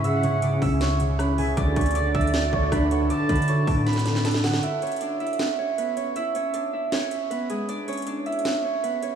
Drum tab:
HH |x-----------x-----------x-----------o-----------x-----------x-----------x-----------o-----------|x-----------x--x--x--x--x-----------x---x---x---x-----------------------x-----------x-----------|x-----------x---x---x---x-----------o-----------x---x---x---x-----------x---x---x---o-----------|x-----------x--x--x--x--x-----------x---x---x---x-----------------------x-----------x-----------|
SD |------------------------------------------------o-----------------------r-----------------------|------------------------------------------------o-----------------------r-----------------------|------------------------------------------------o-----o-----o-----o-----o-----o-----o-----o-----|------------------------------------------------o-----------------------------------------------|
BD |------------------------------------o-----------------------------------------------------------|o-----------o-----------------------o-----------------------o-----------o-----------------------|------------o-----------------------o-----------------------------------------------------------|------------------------------------------------------------------------------------------------|

HH |x-----------x-----------x-----------------------x-----------x-----------x-----------x-----------|x-----------x--x--x--x--x-----------x---x---x---x-----------------------x-----------x-----------|
SD |------------------------------------------------o-----------------------------------------------|------------------------------------------------o-----------------------------------------------|
BD |------------------------------------------------------------------------------------------------|------------------------------------------------------------------------------------------------|